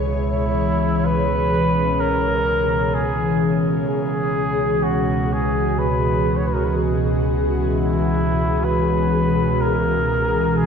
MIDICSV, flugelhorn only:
0, 0, Header, 1, 2, 480
1, 0, Start_track
1, 0, Tempo, 952381
1, 46, Time_signature, 4, 2, 24, 8
1, 5373, End_track
2, 0, Start_track
2, 0, Title_t, "Flugelhorn"
2, 0, Program_c, 0, 56
2, 50, Note_on_c, 0, 64, 85
2, 532, Note_on_c, 0, 71, 98
2, 539, Note_off_c, 0, 64, 0
2, 1010, Note_on_c, 0, 70, 102
2, 1018, Note_off_c, 0, 71, 0
2, 1485, Note_on_c, 0, 68, 90
2, 1493, Note_off_c, 0, 70, 0
2, 1846, Note_off_c, 0, 68, 0
2, 1956, Note_on_c, 0, 68, 90
2, 2434, Note_on_c, 0, 66, 82
2, 2442, Note_off_c, 0, 68, 0
2, 2685, Note_on_c, 0, 68, 82
2, 2692, Note_off_c, 0, 66, 0
2, 2918, Note_on_c, 0, 71, 85
2, 2925, Note_off_c, 0, 68, 0
2, 3210, Note_on_c, 0, 73, 72
2, 3217, Note_off_c, 0, 71, 0
2, 3263, Note_on_c, 0, 71, 69
2, 3271, Note_off_c, 0, 73, 0
2, 3291, Note_on_c, 0, 70, 69
2, 3299, Note_off_c, 0, 71, 0
2, 3350, Note_on_c, 0, 71, 72
2, 3358, Note_off_c, 0, 70, 0
2, 3401, Note_off_c, 0, 71, 0
2, 3899, Note_on_c, 0, 64, 89
2, 4358, Note_on_c, 0, 71, 90
2, 4366, Note_off_c, 0, 64, 0
2, 4845, Note_on_c, 0, 70, 90
2, 4852, Note_off_c, 0, 71, 0
2, 5328, Note_on_c, 0, 68, 88
2, 5336, Note_off_c, 0, 70, 0
2, 5373, Note_off_c, 0, 68, 0
2, 5373, End_track
0, 0, End_of_file